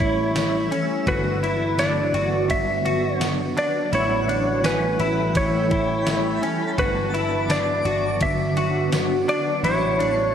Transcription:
Already playing: A1 E3 A3 E4 C#5
0.00 G3 C#4 E4 E5, kick, ride
0.34 E3 G3 C#4 E4, snare, ride, tambourine
0.70 G3 C#4 E4, ride
1.06 G1 G2 D3 F#3 B3 D4 F#4 B4, kick, ride
1.41 B3 D4 E4, ride
1.77 D3 F#3 B3 D4 D5, snare, ride, tambourine
2.13 G1 B3 D4 F#4, ride
2.17 F#3
2.48 G1 G2 D3 F#3 B3 D4 E5, kick, ride
2.84 F#3 B3 D4 F#4, ride
3.20 D3 F#3 B3 D4, snare, ride, tambourine
3.55 F#3 B3 D4 D5 F#5, ride
3.91 A1 A2 E3 G3 A3 C#4 E4 C#5, ride
4.27 G3 C#4 D4 E4, ride
4.63 E3 G3 C#4 E4 B4, snare, ride, tambourine
4.98 A1 G3 C#4 E4 G5, ride
5.23 B5
5.34 A1 A2 E3 G3 C#4 E4 C#5, kick, ride
5.70 G3 C#4 E4, kick, ride
6.05 E3 G3 C#4 E4 A5, snare, ride, tambourine
6.41 G3 C#4 E4, ride
6.77 G1 G2 D3 F#3 B3 D4 F#4 B4, kick, ride
7.12 F#3 B3 D4 E4 D6, ride
7.48 D3 F#3 B3 D4 D5, snare, ride, tambourine
7.84 G1 F#3 B3 D4 F#4, ride
8.20 G1 G2 D3 F#3 B3 D4 E5, kick, ride
8.56 F#3 B3 D4 F#4, ride
8.91 D3 F#3 B3 D4, snare, ride, tambourine
9.27 F#3 B3 D4 D5 C#6, ride
9.63 A1 A2 E3 G3 A3 C#4 E4 C#5, ride
9.99 G3 C#4 D4 E4, ride

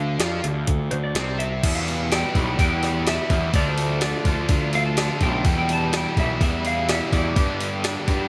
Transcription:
Already playing: D2 D3 D4 F5
0.19 F2 F3 F4, snare, closed hi-hat
0.44 D2 D3, closed hi-hat
0.67 D2 D3, kick, closed hi-hat
0.91 D2 D3 C5, closed hi-hat
1.04 D5
1.15 C2 C3 C4, snare, closed hi-hat
1.39 E5, closed hi-hat
1.63 E2 B2 E3 G3 B3 E4 G4 B4 G5 B5, kick, open hi-hat, crash
1.75 F5
1.88 open hi-hat
2.10 E3 G3 B3 E4 G5, snare, open hi-hat
2.35 B1 E3 G3 B3 E4, kick, open hi-hat
2.58 E2 E3 G3 B3 E4 G5, kick, open hi-hat
2.83 snare, open hi-hat
3.07 E2 B2 E3 G3 B3 E4 E5, snare, open hi-hat
3.30 E2 E3 G3 B3 E4, kick, open hi-hat
3.53 D2 D3 A3 D4 F4 A4 D5 A5, kick, open hi-hat
3.68 C5
3.78 open hi-hat
4.00 D3 A3 D4 F4 D5, snare, open hi-hat
4.25 D2 A3 D4 F4, kick, open hi-hat
4.48 D2 D3 A3 D4 F4, kick, open hi-hat
4.73 F5, open hi-hat
4.86 A5
4.97 D3 A3 D4 F4, snare, open hi-hat
5.21 B1 A3 D4 F4 G5, kick, open hi-hat
5.44 E2 B2 E3 G3 B3 E4 G4 B4 E5 B5, kick, open hi-hat
5.58 G5
5.69 A5, open hi-hat
5.93 E3 G3 B3 E4, snare, open hi-hat
5.97 G5
6.17 B1 E3 G3 B3 E4 E5, kick, open hi-hat
6.41 E2 E3 G3 B3 E4 E5, kick, open hi-hat
6.65 F5, open hi-hat
6.89 E2 B2 E3 G3 B3 E4 E5, snare, open hi-hat
7.12 E2 E3 G3 B3 E4 D5, kick, open hi-hat
7.36 G2 D3 G3 B3 D4 G4 D5, kick, open hi-hat
7.61 open hi-hat
7.84 G3 B3 D4 G4, snare, open hi-hat
8.07 G2 G3 B3 D4 G4, kick, open hi-hat

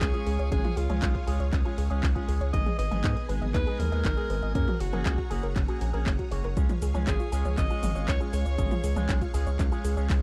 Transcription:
Already playing: G#4 C#5 F5 C#6
0.01 C#2 C#4, kick, clap, closed hi-hat
0.13 G#3 C#4 F4 G#4, closed hi-hat
0.27 C#2 G#4, open hi-hat
0.39 C#2 C#5, closed hi-hat
0.51 G#1 G#3 C#4 F4 G#4 D#6, kick, closed hi-hat
0.64 F4, closed hi-hat, high tom
0.77 C#2 F4 G#4, open hi-hat
0.89 C#2 G#3 C#4 F4 G#4 C#5, closed hi-hat, high tom
1.02 B1 C#4, kick, clap, closed hi-hat
1.15 F4, kick, closed hi-hat
1.27 C#2 G#3 C#4 F4 G#4, open hi-hat
1.40 C#2 C#5, closed hi-hat
1.53 C#2 C#4, kick, clap, closed hi-hat
1.65 G#3 C#4 F4 G#4, closed hi-hat
1.78 C#2 G#4, open hi-hat
1.90 C#2 G#3 C#4 F4 G#4 C#5, closed hi-hat
2.03 C#2 C#4, kick, clap, open hi-hat
2.15 G#3 C#4 F4 G#4, kick, closed hi-hat
2.28 C#2 G#4, open hi-hat
2.41 C#2 C#5, closed hi-hat
2.53 G#1 G#3 B3 D#4 G#4 D#5 G#5, kick, closed hi-hat
2.66 G#4, closed hi-hat, high tom
2.79 G#1 B4 D#5, open hi-hat
2.91 G#1 G#3 B3 D#4 G#4 D#5, closed hi-hat, high tom
3.04 G#2 D#4, kick, clap, closed hi-hat
3.16 G#4, closed hi-hat
3.29 G#1 G#3 B3 D#4 G#4 B4, open hi-hat
3.42 G#1 D#5, closed hi-hat, high tom
3.54 D#2 D#4 B4, kick, clap, closed hi-hat
3.66 G#3 B3 D#4 G#4, closed hi-hat
3.79 D#2 A#4 B4, open hi-hat, high tom
3.92 D#2 G#3 B3 D#4 G#4 D#5, closed hi-hat
4.05 G#1 D#4, kick, clap, closed hi-hat
4.17 G#3 B3 D#4 G#4, closed hi-hat
4.30 G#1 B4, open hi-hat
4.42 G#1 D#5, closed hi-hat
4.55 F#2 A#3 C#4 F#4 G#4 A#4 C#5 F#5 A#5, kick, closed hi-hat
4.68 F#4, closed hi-hat, high tom
4.80 F#1 F#4 G#4, open hi-hat
4.93 F#1 A#3 C#4 F#4 G#4 A#4, closed hi-hat, high tom
5.05 C#2 C#4, kick, clap, closed hi-hat
5.18 F#4, kick, closed hi-hat
5.30 F#1 A#3 C#4 F#4 G#4, open hi-hat
5.43 F#1 A#4, closed hi-hat
5.56 F#1 C#4, kick, clap, closed hi-hat
5.68 A#3 C#4 F#4 G#4, closed hi-hat
5.81 A#1 G#4, open hi-hat
5.93 A#1 A#3 C#4 F#4 G#4 A#4, closed hi-hat
6.06 F#1 C#4, kick, clap, open hi-hat
6.19 F#4, kick, closed hi-hat
6.31 F#1 A#3 C#4 F#4 G#4 C#5, open hi-hat
6.44 F#1 A#4, closed hi-hat
6.56 C#2 G#3 C#4 F4 G#4 F5 C#6, kick, closed hi-hat, cabasa
6.69 F4, closed hi-hat, high tom, cabasa
6.82 C#2 G#4, open hi-hat, cabasa
6.94 C#2 G#3 C#4 F4 G#4 C#5, closed hi-hat, high tom, cabasa
7.07 G#1 C#4 G#4, kick, clap, closed hi-hat, cabasa
7.20 F4, closed hi-hat, cabasa
7.32 C#2 G#3 C#4 F4 G#4, open hi-hat, cabasa
7.45 C#2 C#5, closed hi-hat, high tom, cabasa
7.58 G#1 C#4 D#5, kick, clap, closed hi-hat, cabasa
7.70 G#3 C#4 F4 G#4, closed hi-hat, cabasa
7.83 G#1 G#4, open hi-hat, high tom, cabasa
7.95 G#1 G#3 C#4 F4 G#4 C#5, closed hi-hat, cabasa
8.08 C#2 C#4 C#5, kick, clap, closed hi-hat, cabasa
8.20 G#3 C#4 F4 G#4, closed hi-hat, cabasa
8.33 C#2 G#4 C#5, open hi-hat, cabasa
8.46 C#2 C#5, closed hi-hat, cabasa
8.58 G#1 G#3 C#4 F4 G#4, kick, closed hi-hat, cabasa
8.71 F4, closed hi-hat, high tom, cabasa
8.84 C#2 G#4, open hi-hat, cabasa
8.96 C#2 G#3 C#4 F4 G#4 C#5, closed hi-hat, high tom, cabasa
9.09 B1 C#4, kick, clap, closed hi-hat, cabasa
9.21 F4, kick, closed hi-hat, cabasa
9.34 C#2 G#3 C#4 F4 G#4, open hi-hat, cabasa
9.47 C#2 C#5, closed hi-hat, cabasa
9.59 C#2 C#4, kick, clap, closed hi-hat, cabasa
9.72 G#3 C#4 F4 G#4, closed hi-hat, cabasa
9.84 C#2 G#4, open hi-hat, cabasa
9.97 C#2 G#3 C#4 F4 G#4 C#5, closed hi-hat, cabasa
10.10 C#2 C#4, kick, clap, open hi-hat, cabasa

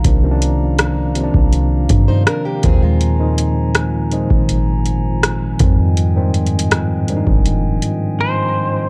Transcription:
Already playing: F4 F5 A#5
0.04 C2 C3 D#3 F3 A#3 D4 D5, kick, closed hi-hat
0.23 C3 D#3 F3 A#3 C#4
0.31 D4
0.42 closed hi-hat
0.79 cross-stick, closed hi-hat
1.15 C3 D#3 F3 A#3 C4, closed hi-hat
1.23 D4
1.34 C2, kick
1.53 closed hi-hat
1.89 G2, kick, closed hi-hat
2.08 D#4 C5
2.27 D4 A#4, cross-stick, closed hi-hat
2.45 A#3 G4
2.63 D#2 A#2 D#3 F3 G#3 C4 F4 G#4 C5 G#5, kick, closed hi-hat
2.82 G#3 F4
3.01 closed hi-hat
3.19 A#2 D#3 F3 G#3 D#4
3.38 closed hi-hat
3.75 cross-stick, closed hi-hat
4.12 A#2 D#3 F3 G#3 D#4, closed hi-hat
4.30 G#1, kick
4.49 closed hi-hat
4.86 closed hi-hat
5.23 cross-stick, closed hi-hat
5.59 F2 G#2 D#3 F3 G3 C4 D#5 G5, kick, closed hi-hat
5.97 closed hi-hat
6.16 G2 D#3 F3 G3 C4
6.22 G#2
6.34 closed hi-hat
6.47 closed hi-hat
6.59 closed hi-hat
6.71 cross-stick, closed hi-hat
7.08 G#2 D#3 F3 G3 D4, closed hi-hat
7.17 D#4
7.27 F1, kick
7.46 closed hi-hat
7.82 closed hi-hat
8.21 C5

